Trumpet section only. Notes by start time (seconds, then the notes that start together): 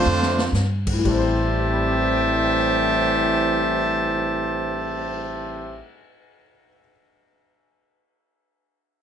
Already playing: A3 D4 F4 C5
1.07 G4 C5 E5 A5